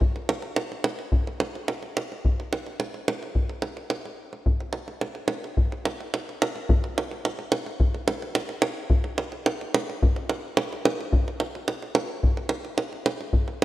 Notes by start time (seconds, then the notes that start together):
0.01 davul low
0.16 davul high
0.29 davul high
0.42 davul high
0.56 davul high
0.72 davul high
0.84 davul high
0.99 davul high
1.12 davul low
1.27 davul high
1.40 davul high
1.55 davul high
1.68 davul high
1.83 davul high
1.97 davul high
2.12 davul high
2.25 davul low
2.40 davul high
2.53 davul high
2.66 davul high
2.80 davul high
2.94 davul high
3.08 davul high
3.23 davul high
3.35 davul low
3.49 davul high
3.62 davul high
3.77 davul high
3.90 davul high
4.05 davul high
4.33 davul high
4.46 davul low
4.60 davul high
4.73 davul high
4.88 davul high
5.01 davul high
5.15 davul high
5.28 davul high
5.44 davul high
5.57 davul low
5.72 davul high
5.85 davul high
6.00 davul high
6.14 davul high
6.29 davul high
6.42 davul high
6.56 davul high
6.69 davul low
6.84 davul high
6.98 davul high
7.11 davul high
7.25 davul high
7.39 davul high
7.52 davul high
7.66 davul high
7.80 davul low
7.94 davul high
8.08 davul high
8.22 davul high
8.35 davul high
8.49 davul high
8.62 davul high
8.90 davul low
9.04 davul high
9.18 davul high
9.32 davul high
9.46 davul high
9.61 davul high
9.74 davul high
9.90 davul high
10.03 davul low
10.16 davul high
10.29 davul high
10.57 davul high
10.73 davul high
10.85 davul high
11.01 davul high
11.13 davul low
11.28 davul high
11.40 davul high
11.55 davul high
11.68 davul high
11.82 davul high
11.95 davul high
12.23 davul low
12.37 davul high
12.49 davul high
12.65 davul high
12.78 davul high
12.93 davul high
13.06 davul high
13.21 davul high
13.33 davul low
13.48 davul high